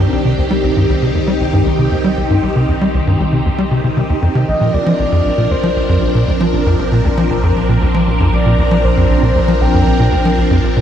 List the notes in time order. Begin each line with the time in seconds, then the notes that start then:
Already playing: C2 D#3 C4 D4 G4
0.12 C2
0.25 C3
0.38 D#2 D#4
0.51 G3
0.64 C2
0.77 G2
0.89 C2
1.02 C3
1.15 D#2
1.28 G3
1.40 C2
1.53 G2
1.66 C2
1.79 C3
1.92 D#2
2.04 G3
2.17 C2
2.30 G2
2.43 C2
2.56 C3
2.68 D#2
2.81 G3
2.94 C2
3.07 G2
3.20 C2
3.32 C3
3.45 D#2
3.58 G3
3.71 C3
3.84 C3
3.97 C3
4.10 D#2
4.22 F2
4.35 C3
4.48 A#1 F3 C4 D4 A#4 D#5
4.61 A#2
4.73 D2 D5
4.86 F3
4.99 A#1
5.12 F2
5.25 A#1
5.38 A#2
5.51 D2 C5
5.63 F3
5.76 A#1
5.89 F2
6.02 A#1
6.15 A#2
6.28 D2
6.40 F3
6.53 A#1
6.66 F2
6.79 A#1
6.92 A#2
7.05 D2
7.17 F3
7.30 A#1
7.43 F2
7.56 A#1
7.69 A#2
7.82 D2
7.94 F3
8.07 A#1
8.20 F2
8.33 A#1 D5
8.46 A#2
8.58 D2 D5
8.71 F3
8.84 A#1 C5
8.97 F2
9.10 A#1
9.22 A#2
9.35 D2
9.48 F3
9.61 A#1 G5
9.74 F2
9.87 A#1
10.00 A#2
10.12 D2
10.25 F3
10.38 A#1
10.51 F2
10.64 A#1
10.76 A#2